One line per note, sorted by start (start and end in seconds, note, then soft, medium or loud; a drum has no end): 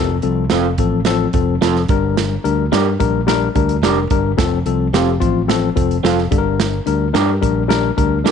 0.00 0.19 F1 loud
0.00 0.16 F3 medium
0.00 0.16 C4 medium
0.00 0.16 A4 loud
0.22 0.47 C2 medium
0.22 0.43 F3 medium
0.22 0.43 C4 medium
0.22 0.43 A4 medium
0.22 closed hi-hat medium
0.50 0.75 F1 medium
0.50 0.71 F3 medium
0.50 0.65 C4 medium
0.50 0.71 C4 medium
0.50 0.66 F4 medium
0.50 0.71 A4 medium
0.50 0.66 A4 medium
0.50 snare loud
0.50 closed hi-hat medium
0.78 1.26 A1 medium
0.78 0.99 F3 medium
0.78 0.99 C4 medium
0.78 0.99 A4 medium
0.78 kick medium
0.78 closed hi-hat medium
1.05 1.26 F3 loud
1.05 1.27 C4 medium
1.05 1.27 A4 loud
1.05 snare loud
1.05 closed hi-hat medium
1.33 1.58 F1 medium
1.33 1.54 F3 medium
1.33 1.54 C4 medium
1.33 1.54 A4 medium
1.33 kick medium
1.33 closed hi-hat medium
1.61 1.86 F1 medium
1.61 1.82 F3 medium
1.61 1.76 C4 medium
1.61 1.82 C4 medium
1.61 1.76 F4 medium
1.61 1.82 A4 medium
1.61 1.77 A4 medium
1.61 snare loud
1.61 closed hi-hat medium
1.76 snare soft
1.88 2.36 G1 medium
1.88 2.34 G3 medium
1.88 2.34 D4 medium
1.88 2.34 A#4 medium
1.88 kick loud
1.88 closed hi-hat medium
2.17 snare loud
2.17 closed hi-hat medium
2.44 2.68 D2 medium
2.44 2.65 G3 medium
2.44 2.65 D4 medium
2.44 2.65 A#4 medium
2.44 closed hi-hat medium
2.72 2.96 G2 medium
2.72 2.92 G3 medium
2.72 2.92 D4 medium
2.72 2.87 D4 medium
2.72 2.87 G4 medium
2.72 2.92 A#4 medium
2.72 2.87 A#4 medium
2.72 snare loud
2.72 closed hi-hat medium
3.00 3.47 A#1 medium
3.00 3.20 G3 medium
3.00 3.20 D4 medium
3.00 3.20 A#4 medium
3.00 kick medium
3.00 closed hi-hat medium
3.27 3.47 G3 loud
3.27 3.47 D4 medium
3.27 3.48 A#4 loud
3.27 snare loud
3.27 closed hi-hat medium
3.55 3.79 D2 medium
3.55 3.75 G3 medium
3.55 3.75 D4 medium
3.55 3.76 A#4 medium
3.55 kick medium
3.55 closed hi-hat medium
3.69 closed hi-hat soft
3.82 4.06 F1 medium
3.82 4.03 G3 medium
3.82 3.97 D4 medium
3.82 4.03 D4 medium
3.82 3.98 G4 medium
3.82 4.03 A#4 medium
3.82 3.98 A#4 medium
3.82 snare loud
3.82 closed hi-hat medium
4.10 4.34 G1 medium
4.10 4.31 G3 medium
4.10 4.31 D4 medium
4.10 4.31 A#4 medium
4.10 kick medium
4.10 closed hi-hat medium
4.37 4.62 F1 loud
4.37 4.58 F3 loud
4.37 4.58 C4 medium
4.37 4.58 A4 loud
4.37 kick loud
4.37 snare loud
4.37 closed hi-hat medium
4.65 4.89 C2 medium
4.65 4.86 F3 medium
4.65 4.86 C4 medium
4.65 4.86 A4 medium
4.65 closed hi-hat medium
4.93 5.17 F1 medium
4.93 5.13 F3 medium
4.93 5.08 C4 medium
4.93 5.14 C4 medium
4.93 5.08 F4 medium
4.93 5.14 G4 medium
4.93 5.09 A4 medium
4.93 snare loud
4.93 closed hi-hat medium
5.20 5.69 A1 medium
5.20 5.41 F3 medium
5.20 5.41 C4 medium
5.20 5.41 F4 medium
5.20 kick medium
5.20 closed hi-hat medium
5.48 5.69 F3 loud
5.48 5.69 C4 medium
5.48 5.69 A4 loud
5.48 snare loud
5.48 closed hi-hat medium
5.76 6.00 F1 medium
5.76 5.96 F3 medium
5.76 5.96 C4 medium
5.76 5.96 A4 medium
5.76 kick medium
5.76 closed hi-hat medium
5.91 closed hi-hat soft
6.03 6.28 F1 medium
6.03 6.24 F3 medium
6.03 6.18 C4 medium
6.03 6.24 C4 medium
6.03 6.19 F4 medium
6.03 6.24 A4 medium
6.03 6.19 A4 medium
6.03 snare loud
6.03 closed hi-hat medium
6.18 snare soft
6.31 6.79 G1 medium
6.31 6.76 G3 medium
6.31 6.76 D4 medium
6.31 6.38 A4 medium
6.31 kick medium
6.31 closed hi-hat medium
6.38 6.79 A#4 medium
6.60 snare loud
6.60 closed hi-hat medium
6.86 7.11 D2 medium
6.86 7.07 G3 medium
6.86 7.07 D4 medium
6.86 7.07 A#4 medium
6.86 closed hi-hat medium
7.13 7.38 G2 medium
7.13 7.34 G3 medium
7.13 7.34 D4 medium
7.13 7.29 D4 medium
7.13 7.29 G4 medium
7.13 7.34 A#4 medium
7.13 7.30 A#4 medium
7.13 snare loud
7.13 closed hi-hat medium
7.41 7.90 A#1 medium
7.41 7.62 G3 medium
7.41 7.62 D4 medium
7.41 7.62 A#4 medium
7.41 kick medium
7.41 closed hi-hat medium
7.68 7.89 G3 loud
7.68 7.89 D4 medium
7.68 7.90 A#4 loud
7.68 snare loud
7.68 closed hi-hat medium
7.97 8.22 D2 medium
7.97 8.17 G3 medium
7.97 8.17 D4 medium
7.97 8.18 A#4 medium
7.97 kick medium
7.97 closed hi-hat medium
8.24 8.31 G3 medium
8.24 8.31 D4 medium
8.24 8.31 G4 medium
8.24 8.31 A4 medium
8.24 8.31 A#4 medium
8.24 snare loud
8.24 closed hi-hat medium